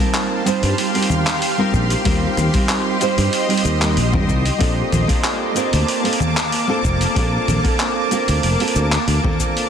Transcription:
Already playing: G3 G4 F5 C6
0.00 C4 D#4 F4 A#4, shaker
0.14 clap, open hi-hat, shaker
0.45 G3 C4 D#4 F4 C5, open hi-hat, shaker
0.63 G2, open hi-hat, shaker
0.78 open hi-hat, shaker
0.94 G3 C4 D#4 F4 A#4, open hi-hat
1.03 open hi-hat
1.10 low conga, shaker
1.27 clap, open hi-hat, shaker
1.42 open hi-hat, shaker
1.58 G3 C4 D#4 F4 A#4
1.74 A#1, kick, shaker
1.90 open hi-hat, shaker
2.04 D#2 G3 C4 D#4 F4 A#4 D#5, kick, open hi-hat, shaker
2.37 D#2, open hi-hat, low conga, shaker
2.53 G3 C4 D#4 F4 A#4, kick, open hi-hat, shaker
2.69 clap, open hi-hat, shaker
3.00 G3 C4 D#4 F4 C5, open hi-hat, shaker
3.18 G2, open hi-hat, shaker
3.33 open hi-hat, shaker
3.48 G3 C4 D#4 F4 A#4, open hi-hat
3.57 open hi-hat
3.65 D#2, open hi-hat, shaker
3.80 G3 C4 D#4 F4 A#4, clap, open hi-hat, shaker
3.97 A#1, open hi-hat, shaker
4.12 G2 G3 C4 D#4 F4 A#4, kick, low conga
4.26 C2 G3 C4 D#4 F4 A#4, kick, shaker
4.46 open hi-hat, shaker
4.58 A#1 A#3 C4 D4 F4 A4 A5 D6, kick, open hi-hat, shaker
4.92 A#1, open hi-hat, low conga, shaker
5.07 A#3 C4 D4 F4 A4, kick, open hi-hat, shaker
5.24 clap, open hi-hat, shaker
5.54 A#3 C4 D4 F4 A#4, open hi-hat, shaker
5.73 D2, open hi-hat, shaker
5.88 open hi-hat, shaker
6.04 A#3 C4 D4 F4 A4, open hi-hat
6.13 open hi-hat
6.20 low conga, shaker
6.37 clap, open hi-hat, shaker
6.52 open hi-hat, shaker
6.67 A#3 C4 D4 F4 A4
6.84 F1, kick, shaker
7.01 open hi-hat, shaker
7.15 A#1 A#3 C4 D4 F4 A4, kick, open hi-hat, shaker
7.48 A#1, open hi-hat, low conga, shaker
7.63 A#3 C4 D4 F4 A4, kick, open hi-hat, shaker
7.80 clap, open hi-hat, shaker
8.11 A#3 C4 D4 F4 A#4, open hi-hat, shaker
8.28 D2, open hi-hat, shaker
8.43 F1, open hi-hat, shaker
8.59 A#3 C4 D4 F4 A4, open hi-hat
8.68 open hi-hat
8.76 D2, shaker
8.92 clap, open hi-hat, shaker
9.07 D2, open hi-hat, shaker
9.23 A#3 C4 D4 F4 A4, kick, low conga
9.39 kick, shaker
9.57 open hi-hat, shaker

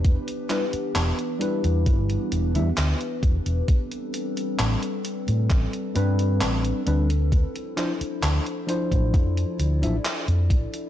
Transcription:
Already playing: E1 E3 B3 D4 G4 B4
0.05 kick, closed hi-hat
0.28 closed hi-hat
0.49 G3 D4 E4 B4, clap, closed hi-hat
0.73 muted fingered electric bass stroke, closed hi-hat
0.95 E1, clap, closed hi-hat
1.19 closed hi-hat
1.39 G3 D4 E4 B4, closed hi-hat
1.64 E2, closed hi-hat
1.86 G1, kick, closed hi-hat
2.10 closed hi-hat
2.32 E1, closed hi-hat
2.54 E2 G3 D4 E4 E5, closed hi-hat
2.77 D2, clap, closed hi-hat
3.01 closed hi-hat
3.23 E1, kick, closed hi-hat
3.46 E1, closed hi-hat
3.68 G3 C4 D4 A4, kick, closed hi-hat
3.91 closed hi-hat
4.14 closed hi-hat
4.37 closed hi-hat
4.59 A1, clap, closed hi-hat
4.83 closed hi-hat
5.05 closed hi-hat
5.28 A2, closed hi-hat
5.50 A1, kick, clap, closed hi-hat
5.73 closed hi-hat
5.95 G2 G3 C4 D4 B4, closed hi-hat
6.19 closed hi-hat
6.41 A1, clap, closed hi-hat
6.65 closed hi-hat
6.86 D2 G3 C4 D4 B4, closed hi-hat
7.10 closed hi-hat
7.32 F3 E4 C5, kick, closed hi-hat
7.56 closed hi-hat
7.76 F3 D4 E4 C5, clap, closed hi-hat
8.01 muted fingered electric bass stroke, closed hi-hat
8.23 D2, clap, closed hi-hat
8.46 closed hi-hat
8.67 F3 D4 E4 C5, closed hi-hat
8.92 A1, kick, closed hi-hat
9.14 F2 D5, kick, closed hi-hat
9.37 closed hi-hat
9.59 D2, closed hi-hat
9.82 A1 F3 D4 E4 E5, closed hi-hat
10.05 clap, closed hi-hat
10.28 F2, closed hi-hat
10.50 A1, kick, closed hi-hat
10.74 closed hi-hat

